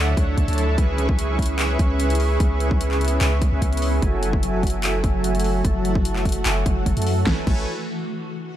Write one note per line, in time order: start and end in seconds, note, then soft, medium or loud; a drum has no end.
0.00 0.15 D2 loud
0.00 0.75 D3 medium
0.00 0.75 F#3 medium
0.00 3.98 E4 medium
0.00 0.75 C#5 medium
0.17 0.36 D2 medium
0.17 0.35 D4 medium
0.17 0.35 A4 medium
0.17 0.35 C#5 medium
0.17 0.35 E5 medium
0.17 0.35 F#5 medium
0.17 kick loud
0.17 closed hi-hat medium
0.37 0.46 D2 loud
0.37 0.45 D4 medium
0.37 0.45 A4 medium
0.37 0.45 C#5 medium
0.37 0.45 E5 medium
0.37 0.45 A5 loud
0.37 kick medium
0.37 closed hi-hat medium
0.48 0.79 D2 medium
0.48 0.76 D4 medium
0.48 0.76 A4 medium
0.48 0.76 C#5 medium
0.48 0.76 E5 medium
0.48 0.76 A5 medium
0.48 closed hi-hat soft
0.53 closed hi-hat medium
0.58 closed hi-hat medium
0.78 1.77 C#2 medium
0.78 3.99 C#3 medium
0.78 3.99 B3 medium
0.78 1.77 C#4 medium
0.78 1.77 G#4 medium
0.78 1.77 B4 medium
0.78 1.77 E5 medium
0.78 1.77 C#6 loud
0.78 kick loud
0.78 closed hi-hat medium
0.98 closed hi-hat medium
1.09 kick loud
1.19 closed hi-hat medium
1.39 kick medium
1.39 closed hi-hat soft
1.42 closed hi-hat medium
1.46 closed hi-hat medium
1.59 clap loud
1.59 closed hi-hat medium
1.79 2.38 C#2 loud
1.79 2.38 C#4 medium
1.79 2.38 G#4 medium
1.79 2.38 B4 medium
1.79 2.38 E5 medium
1.79 2.38 C#6 loud
1.79 kick loud
1.79 closed hi-hat medium
2.00 closed hi-hat medium
2.10 closed hi-hat soft
2.15 closed hi-hat medium
2.20 open hi-hat medium
2.40 3.19 C#2 medium
2.40 3.19 C#4 medium
2.40 3.19 G#4 medium
2.40 3.19 B4 medium
2.40 3.19 E5 medium
2.40 3.19 C#6 loud
2.40 kick loud
2.40 closed hi-hat medium
2.60 closed hi-hat medium
2.71 kick loud
2.81 closed hi-hat medium
2.91 clap soft
3.01 closed hi-hat soft
3.05 closed hi-hat medium
3.08 closed hi-hat medium
3.21 3.50 C#2 loud
3.21 3.33 C#4 medium
3.21 3.33 G#4 medium
3.21 3.33 B4 medium
3.21 3.33 E5 medium
3.21 3.33 C#6 loud
3.21 clap loud
3.21 closed hi-hat medium
3.42 kick loud
3.42 closed hi-hat medium
3.52 3.60 C#2 medium
3.52 3.59 C#4 loud
3.52 3.59 G#4 medium
3.52 3.59 B4 medium
3.52 3.59 E5 medium
3.52 3.59 C#6 loud
3.62 4.00 C#2 loud
3.62 4.00 C#4 medium
3.62 4.00 G#4 medium
3.62 4.00 B4 medium
3.62 4.00 E5 medium
3.62 4.00 C#6 medium
3.62 kick medium
3.62 closed hi-hat medium
3.73 closed hi-hat soft
3.77 closed hi-hat medium
3.82 open hi-hat medium
4.02 5.02 F#1 loud
4.02 7.23 E3 medium
4.02 5.01 F#3 loud
4.02 7.23 A3 medium
4.02 5.01 F#4 medium
4.02 7.23 F#4 medium
4.02 5.01 A4 medium
4.02 5.01 E5 medium
4.02 5.01 G#5 loud
4.02 kick loud
4.02 closed hi-hat medium
4.23 closed hi-hat medium
4.33 kick loud
4.43 closed hi-hat medium
4.63 kick medium
4.63 closed hi-hat soft
4.67 closed hi-hat medium
4.70 closed hi-hat medium
4.84 clap loud
4.84 closed hi-hat medium
5.04 5.63 F#1 medium
5.04 5.62 F#3 medium
5.04 5.62 F#4 medium
5.04 5.62 A4 medium
5.04 5.62 E5 medium
5.04 5.62 G#5 loud
5.04 kick loud
5.04 closed hi-hat medium
5.24 closed hi-hat medium
5.35 closed hi-hat medium
5.40 closed hi-hat medium
5.44 open hi-hat medium
5.64 6.44 F#1 loud
5.64 6.43 F#3 medium
5.64 6.43 F#4 medium
5.64 6.43 A4 medium
5.64 6.43 E5 medium
5.64 6.43 A5 loud
5.64 kick loud
5.64 closed hi-hat medium
5.85 closed hi-hat medium
5.95 kick loud
6.05 closed hi-hat medium
6.16 clap soft
6.25 kick medium
6.25 closed hi-hat medium
6.29 closed hi-hat medium
6.32 closed hi-hat medium
6.45 6.64 F#1 loud
6.45 6.58 F#3 medium
6.45 6.58 F#4 medium
6.45 6.58 A4 medium
6.45 6.58 E5 medium
6.45 6.58 G#5 loud
6.45 clap loud
6.45 closed hi-hat medium
6.66 6.84 F#1 loud
6.66 6.84 F#3 medium
6.66 6.84 F#4 medium
6.66 6.84 A4 medium
6.66 6.84 E5 medium
6.66 6.84 F#5 medium
6.66 kick loud
6.66 closed hi-hat medium
6.86 6.95 F#1 loud
6.86 6.94 F#3 medium
6.86 6.94 F#4 medium
6.86 6.94 A4 medium
6.86 6.94 E5 medium
6.86 6.94 A5 loud
6.86 kick medium
6.86 closed hi-hat medium
6.97 7.25 F#2 medium
6.97 7.24 F#3 medium
6.97 7.24 F#4 medium
6.97 7.24 A4 medium
6.97 7.24 E5 medium
6.97 7.24 A5 medium
6.97 closed hi-hat medium
7.02 closed hi-hat medium
7.07 open hi-hat medium
7.27 7.38 A1 loud
7.27 7.38 A3 medium
7.27 7.38 A4 medium
7.27 7.38 B4 medium
7.27 7.38 C#5 medium
7.27 7.38 G#5 medium
7.27 kick loud
7.27 snare medium
7.47 7.66 A1 loud
7.47 7.62 A3 medium
7.47 7.62 A4 medium
7.47 7.62 B4 medium
7.47 7.62 C#5 medium
7.47 7.62 G#5 medium
7.47 kick loud
7.47 crash medium